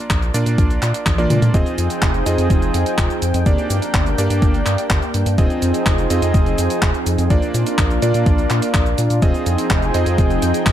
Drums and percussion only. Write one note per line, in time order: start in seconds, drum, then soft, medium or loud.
0.10 kick loud
0.10 clap loud
0.10 closed hi-hat medium
0.10 cabasa soft
0.22 closed hi-hat soft
0.22 cabasa soft
0.34 closed hi-hat medium
0.34 cabasa medium
0.46 closed hi-hat medium
0.46 cabasa soft
0.58 kick loud
0.58 closed hi-hat medium
0.58 cabasa soft
0.70 closed hi-hat soft
0.70 cabasa soft
0.82 clap medium
0.82 closed hi-hat medium
0.82 cabasa medium
0.94 closed hi-hat medium
0.94 cabasa soft
1.06 kick loud
1.06 clap loud
1.06 closed hi-hat soft
1.06 high tom medium
1.06 cabasa soft
1.18 closed hi-hat soft
1.18 high tom medium
1.18 cabasa soft
1.30 closed hi-hat medium
1.30 mid tom medium
1.30 cabasa medium
1.42 closed hi-hat medium
1.42 mid tom medium
1.42 cabasa soft
1.54 kick loud
1.54 closed hi-hat medium
1.54 cabasa soft
1.66 closed hi-hat soft
1.66 cabasa soft
1.78 closed hi-hat medium
1.78 cabasa medium
1.90 closed hi-hat soft
1.90 cabasa soft
2.02 kick loud
2.02 clap loud
2.02 closed hi-hat medium
2.02 cabasa soft
2.14 closed hi-hat soft
2.14 cabasa soft
2.26 closed hi-hat medium
2.26 cabasa medium
2.38 closed hi-hat medium
2.38 cabasa soft
2.50 kick loud
2.50 closed hi-hat medium
2.50 cabasa soft
2.62 closed hi-hat soft
2.62 cabasa soft
2.74 closed hi-hat medium
2.74 cabasa medium
2.86 closed hi-hat medium
2.86 cabasa soft
2.98 kick loud
2.98 clap loud
2.98 closed hi-hat medium
2.98 cabasa soft
3.10 closed hi-hat soft
3.10 cabasa soft
3.22 closed hi-hat medium
3.22 cabasa medium
3.34 closed hi-hat medium
3.34 cabasa soft
3.46 kick loud
3.46 closed hi-hat medium
3.46 cabasa soft
3.58 closed hi-hat soft
3.58 cabasa soft
3.70 closed hi-hat medium
3.70 cabasa medium
3.82 closed hi-hat medium
3.82 cabasa soft
3.94 kick loud
3.94 clap loud
3.94 closed hi-hat medium
3.94 cabasa soft
4.06 closed hi-hat soft
4.06 cabasa soft
4.18 closed hi-hat medium
4.18 cabasa medium
4.30 closed hi-hat medium
4.30 cabasa soft
4.42 kick loud
4.42 closed hi-hat medium
4.42 cabasa soft
4.54 closed hi-hat soft
4.54 cabasa soft
4.66 clap medium
4.66 closed hi-hat medium
4.66 cabasa medium
4.78 closed hi-hat medium
4.78 cabasa soft
4.90 kick loud
4.90 clap loud
4.90 closed hi-hat soft
4.90 cabasa soft
5.02 closed hi-hat soft
5.02 cabasa soft
5.14 closed hi-hat medium
5.14 cabasa medium
5.26 closed hi-hat medium
5.26 cabasa soft
5.38 kick loud
5.38 closed hi-hat soft
5.38 cabasa soft
5.50 closed hi-hat soft
5.50 cabasa soft
5.62 closed hi-hat medium
5.62 cabasa medium
5.74 closed hi-hat soft
5.74 cabasa soft
5.86 kick loud
5.86 clap loud
5.86 closed hi-hat soft
5.86 cabasa soft
5.98 closed hi-hat soft
5.98 cabasa soft
6.10 closed hi-hat medium
6.10 cabasa medium
6.22 closed hi-hat medium
6.22 cabasa soft
6.34 kick loud
6.34 closed hi-hat soft
6.34 cabasa soft
6.46 closed hi-hat soft
6.46 cabasa soft
6.58 closed hi-hat medium
6.58 cabasa medium
6.70 closed hi-hat medium
6.70 cabasa soft
6.82 kick loud
6.82 clap loud
6.82 closed hi-hat soft
6.82 cabasa soft
6.94 closed hi-hat soft
6.94 cabasa soft
7.06 closed hi-hat medium
7.06 cabasa medium
7.18 closed hi-hat soft
7.18 cabasa soft
7.30 kick loud
7.30 closed hi-hat soft
7.30 cabasa soft
7.42 closed hi-hat soft
7.42 cabasa soft
7.54 closed hi-hat medium
7.54 cabasa medium
7.66 closed hi-hat medium
7.66 cabasa soft
7.78 kick loud
7.78 clap loud
7.78 closed hi-hat soft
7.78 cabasa soft
7.90 closed hi-hat soft
7.90 cabasa soft
8.02 closed hi-hat medium
8.02 cabasa medium
8.14 closed hi-hat soft
8.14 cabasa soft
8.26 kick loud
8.26 closed hi-hat soft
8.26 cabasa soft
8.38 closed hi-hat soft
8.38 cabasa soft
8.50 clap medium
8.50 closed hi-hat medium
8.50 cabasa medium
8.62 closed hi-hat medium
8.62 cabasa soft
8.74 kick loud
8.74 clap loud
8.74 closed hi-hat soft
8.74 cabasa soft
8.86 closed hi-hat soft
8.86 cabasa soft
8.98 closed hi-hat medium
8.98 cabasa medium
9.10 closed hi-hat soft
9.10 cabasa soft
9.22 kick loud
9.22 closed hi-hat soft
9.22 cabasa soft
9.34 closed hi-hat soft
9.34 cabasa soft
9.46 closed hi-hat medium
9.46 cabasa medium
9.58 closed hi-hat soft
9.58 cabasa soft
9.70 kick loud
9.70 clap loud
9.70 closed hi-hat soft
9.70 cabasa soft
9.82 closed hi-hat soft
9.82 cabasa soft
9.94 closed hi-hat medium
9.94 cabasa medium
10.06 closed hi-hat medium
10.06 cabasa soft
10.18 kick loud
10.18 closed hi-hat medium
10.18 cabasa soft
10.30 closed hi-hat soft
10.30 cabasa soft
10.42 closed hi-hat medium
10.42 cabasa medium
10.54 closed hi-hat medium
10.54 cabasa soft
10.66 kick loud
10.66 clap loud
10.66 closed hi-hat soft
10.66 cabasa soft